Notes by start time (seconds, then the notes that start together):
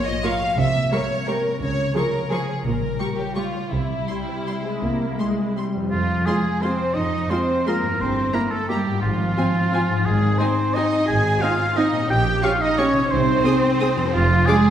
Already playing: A#2 F3 A#3 F4
0.06 C#5 D#5
0.24 A#3 F4 A#4 F5 C#6
0.42 C#5
0.57 C2 C3 E5
0.75 A#3
0.92 G3 C#4 A#4 C#5 C#6
1.10 C#5
1.27 G3 A#4 C#6
1.46 C#5
1.60 C#2 C#3 C#5
1.78 G#3
1.94 F3 F4 G#4 A#4 C#6
2.14 C#5
2.30 F3 G#4 C#6
2.48 C#5
2.64 A#1 A#2 A#4
2.81 G3
2.99 G3 G4 C#6
3.18 G4 C#5
3.36 G3 F4 G4 C#6
3.56 C#5
3.71 C2 C3 E4
3.89 G3
4.08 G3 G4 C6
4.28 C5
4.47 G4 C6
4.65 G#3 C5
4.81 C2 C3 A#3
5.00 G3
5.18 G#3 G4 C6
5.38 C5
5.56 G3 G4 C6
5.75 F2 C5
5.79 G#3
5.84 F4
5.88 F2 F4 C5
5.93 F3
6.26 G#3 F4 G#4 C6
6.62 G#3 C4 F4 C5 C6
6.95 F2 D#4 D#5
7.30 G#3 C4 F4 C5 C6
7.66 G#3 A#3 F4 A#4 C6
7.82 G2
7.86 A#3
7.91 E4
7.96 G1 C4 A#4
8.00 C5
8.33 A#3 E4 A#4 A#5
8.51 A3 A4
8.68 G3 A#3 E4 G4 A#5
8.85 G#2
8.90 C4
8.94 F4
8.99 G#1 F4 G#4
9.03 F3 F4
9.37 C4 F4 G#5
9.72 C4 F4 G#5
9.89 G#2
9.93 C4
9.98 D#4
10.02 G#1 G#3 G#4
10.08 G#4
10.38 C4 D#4 C5 G#5
10.74 C4 D#4 D#5 G#5
11.08 G#1 G#4 G#5
11.41 C4 D#4 F4 F5 G#5
11.77 C4 D#4 D#5 G#5
11.92 A#2
11.97 C#4
12.02 G4
12.06 A#1 G4 C#5 G5
12.10 G5
12.43 C#4 F4 G4 F5 C#6
12.61 D#4 D#5
12.77 C#4 G4 C#5 C#6
12.93 C3
12.98 D#4
13.02 G#4
13.06 C2 C5
13.11 C4 C5
13.45 C4 G#4 D#6
13.80 C4 G#4 D#6
13.96 F2
14.00 D4
14.05 G#4
14.09 F1 F4 D5
14.13 F3 F4
14.46 G#3 D4 G#4 D6